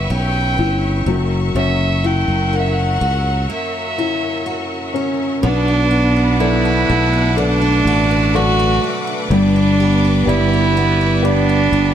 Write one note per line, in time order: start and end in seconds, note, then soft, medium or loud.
0.00 1.03 C#3 medium
0.00 1.17 C#3 medium
0.00 1.08 G3 soft
0.00 1.16 B3 medium
0.00 0.54 E4 soft
0.00 0.57 G4 medium
0.00 1.03 G4 medium
0.00 1.04 B4 medium
0.00 0.12 E5 medium
0.00 5.38 E5 medium
0.00 5.38 C#6 medium
0.10 0.55 B1 medium
0.10 2.52 C#4 medium
0.10 1.07 G5 loud
0.58 1.04 G1 medium
0.58 1.05 E4 medium
0.58 1.16 G4 medium
1.06 1.52 F#1 medium
1.06 1.54 F#2 medium
1.06 4.90 F#3 medium
1.06 5.39 F#4 medium
1.06 5.38 A#4 medium
1.55 2.24 F#1 medium
1.55 5.43 F#2 medium
1.55 3.45 C#4 medium
1.55 2.08 E5 loud
2.04 3.48 A#3 medium
2.04 3.93 E4 medium
2.04 2.57 G5 medium
2.28 2.97 F#1 medium
2.53 3.97 C#4 soft
2.53 4.42 A#4 soft
2.53 2.61 F#5 medium
2.59 2.71 E5 medium
2.69 3.50 F#5 medium
3.01 3.46 C#2 medium
3.01 4.46 F#4 medium
3.50 5.52 A#3 medium
3.50 4.92 E5 medium
3.98 4.95 C#4 medium
3.98 5.39 E4 soft
4.46 5.90 F#4 medium
4.94 5.41 C#4 medium
4.94 5.53 C#4 medium
5.41 6.84 B1 loud
5.41 7.36 B2 medium
5.41 7.31 B3 loud
5.41 9.26 B3 medium
5.41 6.42 D4 loud
5.41 11.94 B4 medium
5.41 9.26 F#5 medium
5.41 9.26 A5 medium
5.41 11.94 D6 medium
5.68 6.16 D4 medium
5.91 6.63 F#4 medium
6.16 7.13 D4 soft
6.40 8.33 F#3 medium
6.40 7.40 E4 loud
6.40 7.34 A4 medium
6.40 7.34 B4 soft
6.40 7.34 D5 medium
6.65 7.85 F#4 medium
6.90 7.81 B1 medium
6.90 8.82 A3 medium
7.13 7.61 D4 medium
7.36 9.30 B2 medium
7.36 9.26 A3 loud
7.36 8.37 D4 loud
7.36 8.30 A4 soft
7.36 8.31 B4 soft
7.36 8.31 D5 medium
7.62 8.11 D4 medium
7.85 8.78 A1 medium
7.85 8.58 F#4 medium
8.11 9.07 D4 medium
8.34 9.41 F#3 medium
8.34 9.07 F#4 loud
8.34 9.27 A4 medium
8.34 9.27 B4 soft
8.34 9.28 D5 medium
8.59 9.40 F#4 medium
8.84 9.41 A3 medium
9.07 9.56 D4 medium
9.30 10.23 G1 loud
9.30 11.24 G2 medium
9.30 11.94 G3 medium
9.30 11.94 B3 medium
9.30 10.30 D4 loud
9.30 11.94 D5 medium
9.56 10.03 D4 medium
9.80 10.52 G4 medium
10.05 11.00 D4 medium
10.25 11.68 G1 loud
10.25 11.94 G3 medium
10.25 11.26 E4 loud
10.25 11.20 G4 soft
10.25 11.20 B4 soft
10.25 11.20 D5 medium
10.53 11.72 G4 medium
10.77 11.94 B3 medium
11.01 11.48 D4 medium
11.22 11.94 G2 medium
11.22 11.94 D4 loud
11.22 11.94 G4 medium
11.22 11.94 B4 soft
11.22 11.94 D5 medium
11.49 11.94 D4 medium
11.72 11.94 G1 medium
11.72 11.94 G4 medium